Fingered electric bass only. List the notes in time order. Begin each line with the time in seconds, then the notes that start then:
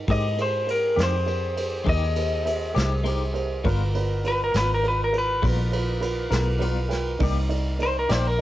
0.08 G#2
0.97 F2
1.87 D#2
2.76 C2
3.65 G1
4.54 G#1
5.43 A#1
6.32 B1
7.21 C2
8.10 A#1